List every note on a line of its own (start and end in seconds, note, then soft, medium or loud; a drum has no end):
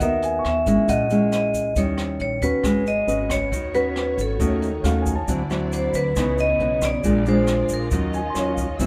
0.00 0.41 D#2 medium
0.00 0.87 D#3 soft
0.00 0.44 B3 soft
0.00 0.45 F#4 soft
0.00 0.45 A#4 soft
0.00 0.45 E5 medium
0.00 0.77 F#5 soft
0.00 kick soft
0.00 closed hi-hat soft
0.00 shaker medium
0.22 1.07 G#5 soft
0.22 closed hi-hat soft
0.22 shaker soft
0.39 1.20 C#6 soft
0.45 0.65 D#2 medium
0.45 0.91 E5 medium
0.45 cross-stick soft
0.45 closed hi-hat soft
0.66 0.76 G#1 medium
0.66 1.07 G#3 medium
0.66 1.07 C#4 medium
0.66 1.07 E4 medium
0.66 kick soft
0.66 closed hi-hat soft
0.66 shaker medium
0.88 1.72 A#1 medium
0.88 1.74 A#2 medium
0.88 1.30 D#5 medium
0.88 1.87 F#5 soft
0.88 kick soft
0.88 closed hi-hat medium
0.88 shaker medium
1.10 1.73 G#3 medium
1.10 1.74 C#4 medium
1.10 1.74 E4 medium
1.10 closed hi-hat soft
1.10 shaker soft
1.32 1.78 D#5 medium
1.32 cross-stick medium
1.32 closed hi-hat soft
1.32 shaker soft
1.54 kick soft
1.54 closed hi-hat soft
1.54 shaker medium
1.76 2.17 D#2 medium
1.76 2.63 D#3 soft
1.76 2.39 G3 medium
1.76 2.39 C#4 soft
1.76 2.39 E4 medium
1.76 2.20 C#5 medium
1.76 kick medium
1.76 closed hi-hat medium
1.76 shaker medium
1.98 cross-stick medium
1.98 closed hi-hat soft
1.98 shaker soft
2.19 2.41 A#1 medium
2.19 2.41 C#5 medium
2.19 closed hi-hat soft
2.41 2.52 D#2 medium
2.41 2.83 C#4 medium
2.41 2.83 F#4 medium
2.41 2.88 B4 medium
2.41 2.83 B4 medium
2.41 kick soft
2.41 closed hi-hat soft
2.41 shaker medium
2.63 3.05 G#1 medium
2.63 3.50 G#3 medium
2.63 4.38 B3 medium
2.63 6.12 F#4 medium
2.63 5.25 C#5 medium
2.63 kick medium
2.63 cross-stick medium
2.63 closed hi-hat soft
2.63 shaker medium
2.86 3.32 D#5 medium
2.86 closed hi-hat soft
2.86 shaker soft
3.07 3.49 G#1 medium
3.07 3.52 C#4 soft
3.07 3.52 F#4 soft
3.07 3.52 B4 medium
3.07 4.07 D#5 soft
3.07 closed hi-hat soft
3.07 shaker soft
3.30 3.76 C#5 medium
3.30 kick soft
3.30 cross-stick medium
3.30 closed hi-hat soft
3.30 shaker medium
3.52 4.14 D#2 medium
3.52 4.38 D#3 medium
3.52 kick soft
3.52 closed hi-hat soft
3.52 shaker medium
3.74 4.37 C#4 medium
3.74 4.37 F#4 medium
3.74 4.20 B4 medium
3.74 4.37 B4 medium
3.74 closed hi-hat soft
3.74 shaker soft
3.96 cross-stick medium
3.96 closed hi-hat soft
4.18 4.38 G#1 medium
4.18 5.04 A4 medium
4.18 closed hi-hat soft
4.18 shaker medium
4.39 4.81 D#2 medium
4.39 5.26 D#3 medium
4.39 5.27 A3 medium
4.39 4.68 A3 medium
4.39 4.69 C#4 medium
4.39 5.27 D#4 medium
4.39 4.69 F#4 medium
4.39 kick medium
4.39 closed hi-hat soft
4.39 shaker medium
4.62 closed hi-hat soft
4.62 shaker soft
4.84 5.25 D#2 medium
4.84 5.14 A3 medium
4.84 5.14 C#4 soft
4.84 5.14 F#4 medium
4.84 5.46 F5 medium
4.84 cross-stick soft
4.84 closed hi-hat soft
4.84 shaker medium
5.00 5.60 G#5 soft
5.06 kick soft
5.06 closed hi-hat soft
5.06 shaker medium
5.16 5.73 A5 soft
5.28 5.90 D2 medium
5.28 6.14 D3 soft
5.28 5.41 F#3 medium
5.28 6.15 C4 medium
5.28 5.41 C4 soft
5.28 7.02 E4 medium
5.28 5.42 E4 medium
5.28 6.15 D5 medium
5.28 kick medium
5.28 closed hi-hat soft
5.28 shaker medium
5.50 6.12 F#3 medium
5.50 6.12 C4 medium
5.50 6.13 E4 medium
5.50 cross-stick medium
5.50 closed hi-hat soft
5.50 shaker soft
5.72 5.95 C5 medium
5.72 closed hi-hat soft
5.72 shaker soft
5.93 6.14 D2 medium
5.93 6.40 B4 medium
5.93 closed hi-hat soft
5.93 shaker medium
6.15 6.57 C#2 medium
6.15 7.02 C#3 medium
6.15 6.45 E3 medium
6.15 7.03 B3 medium
6.15 6.45 B3 medium
6.15 7.02 D#4 medium
6.15 6.45 D#4 medium
6.15 7.03 C#5 medium
6.15 kick medium
6.15 cross-stick medium
6.15 closed hi-hat soft
6.15 shaker medium
6.38 6.85 D#5 loud
6.38 closed hi-hat soft
6.38 shaker soft
6.59 7.01 B1 medium
6.59 6.90 E3 soft
6.59 6.90 B3 soft
6.59 6.90 D#4 medium
6.59 closed hi-hat soft
6.82 7.29 D5 medium
6.82 kick medium
6.82 cross-stick medium
6.82 closed hi-hat soft
6.82 shaker medium
7.03 7.66 A#1 medium
7.03 7.90 A#2 medium
7.03 7.23 G#3 medium
7.03 7.91 A#3 medium
7.03 7.23 D4 medium
7.03 8.78 F4 medium
7.03 7.23 F4 medium
7.03 7.91 G#4 medium
7.03 7.91 D5 medium
7.03 kick medium
7.03 closed hi-hat soft
7.03 shaker medium
7.25 7.89 G#3 soft
7.25 7.89 D4 medium
7.25 7.89 F4 medium
7.25 7.68 C5 medium
7.25 closed hi-hat soft
7.25 shaker soft
7.47 cross-stick medium
7.47 closed hi-hat soft
7.47 shaker soft
7.69 7.90 A#1 medium
7.69 closed hi-hat soft
7.69 shaker medium
7.74 8.56 A#4 medium
7.91 8.32 D#2 medium
7.91 8.77 D#3 medium
7.91 8.20 F#3 medium
7.91 8.78 C#4 medium
7.91 8.21 C#4 medium
7.91 8.21 F4 medium
7.91 8.86 F#4 medium
7.91 8.78 D#5 medium
7.91 kick medium
7.91 closed hi-hat soft
7.91 shaker medium
8.13 8.86 G#5 soft
8.13 closed hi-hat soft
8.13 shaker soft
8.30 8.86 C6 soft
8.35 8.76 D#2 medium
8.35 8.66 F#3 medium
8.35 8.66 C#4 medium
8.35 8.66 F4 medium
8.35 8.86 C#5 medium
8.35 cross-stick soft
8.35 closed hi-hat soft
8.35 shaker medium
8.52 8.86 F5 soft
8.58 kick medium
8.58 closed hi-hat soft
8.58 shaker medium
8.80 8.86 G#1 medium
8.80 8.86 G#2 soft
8.80 8.86 F#3 soft
8.80 8.86 C4 medium
8.80 8.86 C4 soft
8.80 8.86 E4 medium
8.80 8.86 G#4 medium
8.80 8.86 E6 medium
8.80 kick medium
8.80 closed hi-hat soft
8.80 shaker medium